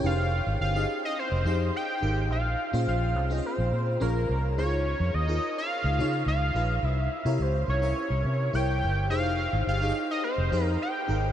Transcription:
0.04 F1 D#4 G4 G#4 B4 F5
0.11 C5
0.47 G#1
0.61 G1 F5
0.75 D#4 G4 G#4 D#5
1.05 D#5
1.19 C5
1.32 F1
1.45 F2 D#4 G4 G#4 D#5
1.76 G5
2.01 G#1 D#4 G4 G#4 A#4
2.30 A#1 F5
2.73 A#2 C#4 F4 G#4 C5
2.88 A#1 F5
3.16 C2
3.30 C#4 F4 G#4 C5 D#5
3.38 C5
3.46 C5
3.58 A#1
3.72 A#2
4.00 A#1 C#4 F4 G#4 A#4 C#5
4.29 C2
4.58 C#2 D#4 E4 G#4 C#5
4.64 F4
5.00 F2
5.14 D#2 D#5
5.28 D#4 F4 G#4 A#4
5.58 F5
5.84 C#2
5.99 C#3 D#4 F4 G#4 C#5
6.26 C#2 F5
6.55 A#1 D#4 F4 G#4 B4
6.83 C2 E5
7.25 C3 E4 G4 A#4 C#5
7.39 C#2 C5
7.68 C2 C#5
7.82 E4 G4 A#4 E5
8.10 C2
8.25 C3
8.53 C2 E4 G4 A#4 C#5 G5
8.82 G1
9.10 F1 D#4 G4 G#4 C5 F5
9.53 G#1
9.67 G1 F5
9.81 D#4 G4 G#4 C#5
9.89 D#5
10.11 D#5
10.24 C5
10.38 F1
10.52 F2 D#4 G4 G#4 C5
10.65 A#4
10.82 G5
11.08 G#1 D#4 G4 G#4 A#4

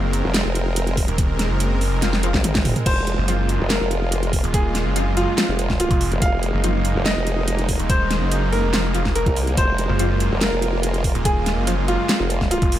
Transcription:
Already playing: F#1 G#3 C4 A#4
0.13 closed hi-hat
0.24 F1
0.34 snare, clap, closed hi-hat
0.45 F1
0.55 closed hi-hat
0.76 closed hi-hat
0.87 closed hi-hat
0.97 kick, open hi-hat
1.08 D#1, closed hi-hat
1.18 kick, closed hi-hat
1.39 snare, closed hi-hat
1.50 F#1
1.60 closed hi-hat
1.81 open hi-hat
1.92 F1
2.02 F3 C4 F4, snare, closed hi-hat
2.13 snare
2.23 F3 C4 F4, closed hi-hat
2.34 G#1, kick, snare
2.44 closed hi-hat, mid tom
2.55 kick, snare, closed hi-hat
2.65 F1, mid tom, open hi-hat
2.76 closed hi-hat, mid tom
2.86 F1 A#3 F4 C5, kick, closed hi-hat, crash
3.07 closed hi-hat
3.18 F#1
3.28 F3 C4 F4, closed hi-hat
3.49 closed hi-hat
3.60 F1
3.70 A#4, snare, clap, closed hi-hat
3.81 F1
3.91 closed hi-hat
4.12 closed hi-hat
4.23 closed hi-hat
4.33 kick, open hi-hat
4.44 D#1, closed hi-hat
4.54 G#4, kick, closed hi-hat
4.75 snare, closed hi-hat
4.86 F#1
4.96 F3 C4 F4, closed hi-hat
5.17 F4, closed hi-hat
5.38 F3 C4 F4, snare, clap, closed hi-hat
5.49 F1
5.59 closed hi-hat
5.70 kick, snare
5.80 F4, closed hi-hat
5.91 F1, kick, closed hi-hat
6.01 open hi-hat
6.12 F1, closed hi-hat
6.22 F1 D#4 F5, kick, closed hi-hat
6.43 closed hi-hat
6.54 F#1
6.64 F3 C4 F4, closed hi-hat
6.85 closed hi-hat
6.96 F1
7.06 D#5, snare, clap, closed hi-hat
7.17 F1
7.27 closed hi-hat
7.48 closed hi-hat
7.59 closed hi-hat
7.69 kick, open hi-hat
7.79 D#1, closed hi-hat
7.90 C5, kick, closed hi-hat
8.11 snare, closed hi-hat
8.21 F#1
8.32 closed hi-hat
8.53 A#4, open hi-hat
8.63 F1
8.74 F3 C4 F4, snare, clap, closed hi-hat
8.94 F3 C4 F4, closed hi-hat
9.05 kick, snare
9.15 A#4, closed hi-hat
9.26 C2, kick, closed hi-hat
9.36 open hi-hat
9.47 closed hi-hat
9.57 F1 F4 C5, kick, closed hi-hat
9.78 closed hi-hat
9.89 F#1
9.99 F3 C4 F4, closed hi-hat
10.20 closed hi-hat
10.31 F1
10.41 A#4, snare, clap, closed hi-hat
10.52 F1
10.62 closed hi-hat
10.83 closed hi-hat
10.94 closed hi-hat
11.04 kick, open hi-hat
11.15 D#1, closed hi-hat
11.25 G#4, kick, closed hi-hat
11.46 snare, closed hi-hat
11.57 F#1
11.67 F3 C4 F4, closed hi-hat
11.88 F4, closed hi-hat
12.09 F3 C4 F4, snare, clap, closed hi-hat
12.20 F1
12.30 closed hi-hat
12.41 kick, snare
12.51 F4, closed hi-hat
12.62 F1, kick, closed hi-hat
12.72 open hi-hat

